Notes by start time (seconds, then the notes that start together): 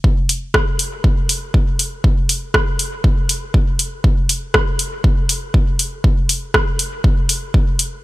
0.04 kick
0.29 open hi-hat
0.54 kick, cross-stick
0.79 open hi-hat
1.04 kick
1.29 open hi-hat
1.54 kick
1.79 open hi-hat
2.04 kick
2.29 open hi-hat
2.54 kick, cross-stick
2.79 open hi-hat
3.04 kick
3.29 open hi-hat
3.54 kick
3.79 open hi-hat
4.04 kick
4.29 open hi-hat
4.54 kick, cross-stick
4.79 open hi-hat
5.04 kick
5.29 open hi-hat
5.54 kick
5.79 open hi-hat
6.04 kick
6.29 open hi-hat
6.54 kick, cross-stick
6.79 open hi-hat
7.04 kick
7.29 open hi-hat
7.54 kick
7.79 open hi-hat